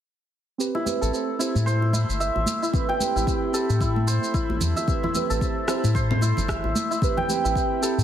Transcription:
0.58 C4 G4 B4, shaker
0.75 E4, high bongo
0.85 C4 G4 B4, high conga, shaker
1.01 A1 A4, shaker
1.12 C4 G4 C5, shaker
1.39 C4 E4 G4 C5, shaker
1.55 A2, high conga, shaker
1.66 C5, shaker
1.82 high bongo
1.93 E4, high bongo, high conga, shaker
2.09 G1, shaker
2.20 E5, shaker
2.36 A1, high bongo
2.46 high conga, shaker
2.62 E4, shaker
2.73 C4 G4 B4, kick, shaker
2.89 G5, high bongo
2.99 C4 G4 B4, high conga, shaker
3.16 A1 E4, shaker
3.26 C4 G4 B4, kick, shaker
3.52 C4 G4 A4, shaker
3.56 B5
3.70 A2, shaker
3.81 E4, kick, shaker
3.96 high conga
4.07 C5, shaker
4.24 shaker
4.34 E4, kick, shaker
4.50 A1, high bongo, high conga
4.61 E2, low conga, shaker
4.76 E5, high bongo, shaker
4.87 C4 G4 B4, kick, shaker
5.03 E4, high bongo, low conga
5.14 C4 G4 B4, high conga, shaker
5.30 A1 A4, shaker
5.41 C4 G4 C5, kick, shaker
5.68 C4 E4 G4 C5, cross-stick, shaker
5.84 A2, high conga, shaker
5.95 C5, kick, shaker
6.11 low conga
6.21 E4, high bongo, high conga, shaker
6.37 G1, low conga, shaker
6.48 E5, kick, cross-stick, shaker
6.64 A1, high bongo
6.75 high conga, shaker
6.91 E4, shaker
7.02 C4 G4 B4, kick, shaker
7.17 G5, high bongo, low conga
7.28 C4 G4 B4, high conga, shaker
7.44 A1 E4, shaker
7.55 C4 G4 B4, kick, shaker
7.81 C4 G4 A4 B5, shaker
7.98 A2, shaker

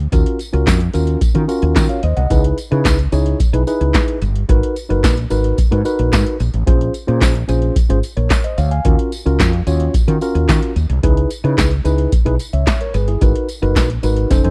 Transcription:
0.12 D#2 C#4 F4 F#4 A#4, kick, closed hi-hat, tambourine
0.26 closed hi-hat
0.39 closed hi-hat, tambourine
0.53 C#2 C#4 F4 F#4 A#4, closed hi-hat
0.67 F2, kick, snare, clap, closed hi-hat, tambourine
0.80 closed hi-hat
0.94 D#2 C#4 F4 F#4 A#4, closed hi-hat, tambourine
1.07 closed hi-hat
1.21 muted fretless electric bass stroke, kick, closed hi-hat, tambourine
1.35 D#3 C#4 F4 F#4 A#4, closed hi-hat
1.48 C#4 F4 F#4 A#4, closed hi-hat, tambourine
1.62 D#2, closed hi-hat
1.76 D#3, kick, snare, clap, closed hi-hat, tambourine
1.89 C#5 F5, closed hi-hat
2.03 D#2 C5 D#5, closed hi-hat
2.17 C2 D#5 F#5, closed hi-hat
2.30 C#2 D#4 E4 G#4 B4, kick, closed hi-hat, tambourine
2.44 closed hi-hat
2.58 closed hi-hat, tambourine
2.71 C#3 D#4 E4 G#4 B4, closed hi-hat
2.85 C#2, kick, snare, clap, closed hi-hat, tambourine
2.99 closed hi-hat
3.12 C#2 D#4 E4 G#4 C#5, closed hi-hat, tambourine
3.26 closed hi-hat
3.40 kick, closed hi-hat, tambourine
3.53 B1 D#4 E4 G#4 B4, closed hi-hat
3.67 D#4 E4 G#4 B4, closed hi-hat, tambourine
3.81 C#2, closed hi-hat
3.94 kick, snare, clap, closed hi-hat, tambourine
4.08 closed hi-hat
4.22 G1, closed hi-hat, tambourine
4.35 closed hi-hat
4.49 G#1 D#4 F#4 A#4 B4, kick, closed hi-hat
4.63 closed hi-hat
4.76 closed hi-hat, tambourine
4.89 F#1 D#4 F#4 A#4 B4, closed hi-hat
5.03 A#1, kick, snare, clap, closed hi-hat, tambourine
5.17 closed hi-hat
5.30 G#1 D#4 F#4 A#4 B4, closed hi-hat, tambourine
5.44 closed hi-hat
5.58 muted fretless electric bass stroke, kick, closed hi-hat, tambourine
5.71 G#2 D#4 F#4 A#4 B4, closed hi-hat
5.85 D#4 F#4 A#4 B4, closed hi-hat, tambourine
5.99 A#1, closed hi-hat
6.13 G#2, kick, snare, clap, closed hi-hat, tambourine
6.26 closed hi-hat
6.40 A#1, closed hi-hat, tambourine
6.54 A1, closed hi-hat
6.67 A#1 C#4 F4 G#4 C5, kick, closed hi-hat
6.81 closed hi-hat
6.94 closed hi-hat, tambourine
7.07 A#2 C#4 F4 G#4 C5, closed hi-hat
7.21 A#1, kick, snare, clap, closed hi-hat, tambourine
7.35 closed hi-hat
7.48 A#1 C#4 F4 G#4 C5, closed hi-hat, tambourine
7.62 closed hi-hat
7.76 kick, closed hi-hat, tambourine
7.89 G#1 C#4 F4 G#4 C5, closed hi-hat
8.03 closed hi-hat, tambourine
8.17 A#1 A#4 C#5, closed hi-hat
8.30 kick, snare, clap, closed hi-hat, tambourine
8.44 C5 D#5, closed hi-hat
8.58 D2 C#5 F5, closed hi-hat, tambourine
8.71 F5 G#5, closed hi-hat
8.85 D#2 C#4 F4 F#4 A#4, kick, closed hi-hat
8.99 closed hi-hat
9.12 closed hi-hat, tambourine
9.26 C#2 C#4 F4 F#4 A#4, closed hi-hat
9.40 F2, kick, snare, clap, closed hi-hat, tambourine
9.53 closed hi-hat
9.67 D#2 C#4 F4 F#4 C#5, closed hi-hat, tambourine
9.80 closed hi-hat
9.94 muted fretless electric bass stroke, kick, closed hi-hat, tambourine
10.08 D#3 C#4 F4 F#4 A#4, closed hi-hat
10.21 C#4 F4 F#4 A#4, closed hi-hat, tambourine
10.35 D#2, closed hi-hat
10.49 D#3, kick, snare, clap, closed hi-hat, tambourine
10.62 closed hi-hat
10.76 D#2, closed hi-hat, tambourine
10.89 C2, closed hi-hat
11.03 C#2 D#4 E4 G#4 B4, kick, closed hi-hat
11.17 closed hi-hat
11.30 closed hi-hat, tambourine
11.44 C#3 D#4 E4 G#4 B4, closed hi-hat
11.58 C#2, kick, snare, clap, closed hi-hat, tambourine
11.71 closed hi-hat
11.85 C#2 D#4 E4 G#4 B4, closed hi-hat, tambourine
11.98 closed hi-hat
12.12 kick, closed hi-hat, tambourine
12.25 B1 D#4 E4 G#4 B4, closed hi-hat
12.39 closed hi-hat, tambourine
12.53 C#2 C#5 E5, closed hi-hat
12.67 kick, snare, clap, closed hi-hat, tambourine
12.81 A#4 C#5, closed hi-hat
12.94 G1 G#4 B4, closed hi-hat, tambourine
13.08 E4 G#4, closed hi-hat
13.21 G#1 D#4 F#4 A#4 B4, kick, closed hi-hat, tambourine
13.36 closed hi-hat
13.49 closed hi-hat, tambourine
13.62 F#1 D#4 F#4 A#4 B4, closed hi-hat
13.76 A#1, kick, snare, clap, closed hi-hat, tambourine
13.90 closed hi-hat
14.03 G#1 D#4 F#4 A#4 B4, closed hi-hat, tambourine
14.16 closed hi-hat
14.30 F1 C#4 D#4 A4 C5, kick, snare, closed hi-hat, tambourine
14.44 F2 C#4 D#4 A4 C5, closed hi-hat

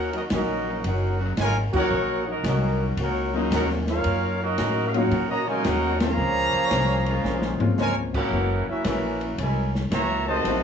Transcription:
Already playing: D#2 D#3 A#3 C#4 D#4 F#4 A#4 C#5 F#5
0.13 F#3 A#3 C#4 D#4 F#4 A#4 D#5, ride
0.30 A#1 D#3 F#3 A#3 C#4 D#4 F#4 A#4 D#5, snare, hi-hat pedal, ride
0.67 C#3 F#3 A#3 D#4
0.83 F#1 D#3 A#3 C#4 D#4 F#4 A#4 C#5 F#5, ride
0.88 F#4
1.19 C#3 F#3 A#3 F#4
1.37 G#1 D#3 G#3 A#3 C#4 F#4 A#4 C#5 G#5, snare, hi-hat pedal, ride
1.41 F4
1.72 F#3 A#3 C#4 D#4 F4 F#4 C#5 F#5, muted upright bass stroke, kick, crash
1.77 D#4 A#4
1.91 A#1 D#3 A#3 C#4 F#4
2.27 F#3 A#3 C#4 D#4 F#4 A#4 D#5
2.44 C2 D#3 F#3 A#3 C#4 D#4 F#4 A#4 D#5, snare, hi-hat pedal, ride
2.97 C#2 D#3 A#3 C#4 F#4, ride
3.01 D#4 A#4 C#5 F#5
3.33 C#3 F#3 A#3 C#4 D#4 F4
3.51 D#2 D#3 A#3 C#4 D#4 F#4 A#4 C#5 F#5, snare, hi-hat pedal, ride
3.70 snare
3.87 A#3 C#4 D#4 F4 A#4 C#5 F5, snare, ride
4.04 F#2 D#3 A#3 C#4 F#4, ride
4.42 F#3 A#3 C#4 D#4 F#4 A#4 D#5
4.58 A2 C#3 D#3 F#3 A#3 C#4 D#4 F#4 A#4, snare, hi-hat pedal, ride
4.87 F5
4.94 F#3 A#3 C#4 D#4 F4 F#4 A#4 C#5 F#5, ride
5.11 A#2 D#3 A#3 C#4 F#4, ride
5.29 C#3 F#3 A#3 F#4 C#5 D#5 A#5
5.48 C#3 F#3 G#3 A#3 D#4 F4 A#4 C#5 G#5
5.64 D#2 D#3 A#3 C#4 D#4 F#4 A#4 C#5 F#5, snare, hi-hat pedal, ride
6.00 F3 G#3 A#3 C4 C#4 F4 G#4 C#5 F5 A#5, snare, ride
6.17 C#2 A#2 F3 G#3 C#4
6.54 muted upright bass stroke
6.71 C2 A#2 F3 G#3 C#4, snare, hi-hat pedal, ride
7.06 C#3 G#3 A#3 F4, ride
7.24 A#1 A#2 F3 G#3 C#4, snare
7.42 snare
7.60 G#3 A#3 C4 C#4 F4, muted upright bass stroke, floor tom
7.78 C#2 A#2 C#3 F3 G#3 C#4 F4 A#4 C#5 G#5, snare, hi-hat pedal
8.14 C#3 F#3 A#3 C#4 E4 F#4 A#4 C#5 F#5, kick, crash
8.31 F#1 F#2 E3 G#3 A#3 C#4 E4 F#4
8.67 A#3 C#4 E4 F#4 A#4 E5, muted upright bass stroke
8.84 A#1 F#2 C#3 E3 F#3 A#3 C#4 E4 F#4 A#4 E5, snare, hi-hat pedal, ride
9.21 ride
9.37 C2 F#2 E3 G#3 A#3 C#4, ride
9.42 E4 A#4 C#5 G#5
9.75 snare
9.90 C#2 F#2 C#3 E3 A#3 C#4 F#4 C#5 E5 A#5, snare, hi-hat pedal, ride
10.26 C3 D#3 A3 F#4 C5 D#5 A5
10.44 A1 F3 F#3 A3 C4 D#4 F4 F#4, ride

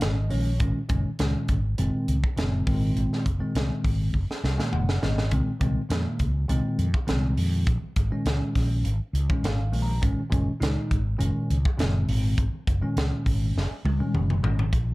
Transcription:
Already playing: A#2 D#3 G#3 C#4
0.01 G#1 D#5, snare, closed hi-hat
0.30 A#1 A#2 D#3 G#3 C#4 C#5, open hi-hat
0.60 G#1 A#2 D#3 G#3 C#4, kick, closed hi-hat
0.77 muted fretless electric bass stroke
0.89 F#1 A#2 D#3 G#3 C#4, kick, closed hi-hat
1.19 C#2 A#2 D#3 G#3 C#4, snare, closed hi-hat
1.48 G#1, kick, closed hi-hat
1.78 F#1 A#2 D#3 G#3 C4, closed hi-hat
1.94 muted fretless electric bass stroke
2.08 C#2, closed hi-hat
2.24 kick
2.37 F#1 A#2 D#3 G#3 C4, snare, closed hi-hat
2.66 G#1 A#2 D#3 G#3 C4, kick, open hi-hat
2.96 G#1, closed hi-hat
3.13 snare
3.26 F#1, kick, closed hi-hat
3.39 A#2 D#3 G#3 C4
3.55 C2, snare, closed hi-hat
3.84 G#1, kick, open hi-hat
4.14 F#1, kick
4.30 muted fretless electric bass stroke, snare
4.44 C2, snare
4.57 A#2 D#3 G#3 A#3, snare
4.72 F#1 F#5, mid tom
4.89 snare
5.02 G#1 A#2 D#3 G#3 C4 D#5, snare
5.18 snare
5.31 C#2 A#2 D#3 G#3 C4, kick, closed hi-hat
5.46 muted fretless electric bass stroke
5.60 C2 A#2 D#3 G#3 C4, kick, closed hi-hat
5.89 F2 A#2 D#3 G#3 A#3, snare, closed hi-hat
6.19 C#2, kick, closed hi-hat
6.49 C2 A#2 D#3 G#3 C4, closed hi-hat
6.65 muted fretless electric bass stroke
6.78 F2, closed hi-hat
6.94 muted fretless electric bass stroke, kick
7.07 C2 A#2 D#3 G#3 C4, snare, closed hi-hat
7.37 F2, open hi-hat
7.67 A#1, kick, closed hi-hat
7.96 G#1, kick, closed hi-hat
8.11 A#2 D#3 G#3 C#4
8.26 C#2, snare, closed hi-hat
8.55 A#1, kick, snare, open hi-hat
8.84 G#1, closed hi-hat
9.01 muted fretless electric bass stroke
9.13 C#2, closed hi-hat
9.29 A#2 D#3 G#3 C#4, kick
9.43 G#1 F5, snare, closed hi-hat
9.72 A#1 A#2 D#3 G#3 A#3, open hi-hat
9.82 A#5
10.01 G#1 A#2 D#3 G#3 C#4, kick, closed hi-hat
10.30 F#1 A#2 D#3 G#3 C#4, kick, closed hi-hat
10.60 C#2 A#2 D#3 G#3 D#4, snare, closed hi-hat
10.91 G#1, kick, closed hi-hat
11.18 F#1 A#2 D#3 G#3 C#4, closed hi-hat
11.36 muted fretless electric bass stroke
11.50 C#2, closed hi-hat
11.65 muted fretless electric bass stroke, kick
11.78 F#1 A#2 D#3 G#3 C4, snare, closed hi-hat
12.09 G#1, open hi-hat
12.38 G#1, kick, closed hi-hat
12.67 F#1, kick, closed hi-hat
12.82 A#2 D#3 G#3 C#4
12.96 C#2, snare, closed hi-hat
13.26 G#1, kick, open hi-hat
13.56 F#1, snare
13.71 muted fretless electric bass stroke
13.85 C#2, high tom
13.99 A#2 D#3 G#3 C#4, muted fretless electric bass stroke
14.14 F#1, mid tom
14.30 mid tom
14.43 G#1 A#2 D#3 G#3 C#4, floor tom
14.59 floor tom
14.73 A#1, kick, closed hi-hat

